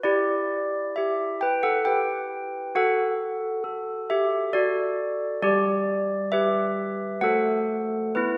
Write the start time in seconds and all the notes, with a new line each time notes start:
0.03 E4 G4 D5
0.96 G4 E5
1.41 B4 G5
1.63 A4 F#5
1.85 G4 B4 G5
2.75 F#4 A4 F#5
3.64 A4
4.10 G4 E5
4.53 F#4 A4 D5
5.42 G3 G4 D5
6.32 G4 B4 E5
7.21 A3 F#4 A4 C5 F#5
8.15 B3 E4 B4